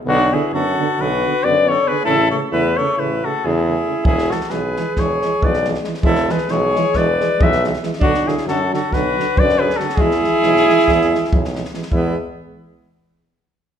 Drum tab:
SD |------------------|------------------|-oooo-o-o-o--ooooo|-oooo-o-o-o--ooooo|
BD |------------------|------------------|o-------o---o-----|o-------o---o-----|

SD |-oooo-o-o-o--o-ooo|-oo-oooooooo-ooooo|------------------|
BD |o-------o---o-----|o-------o---o-----|o-----------------|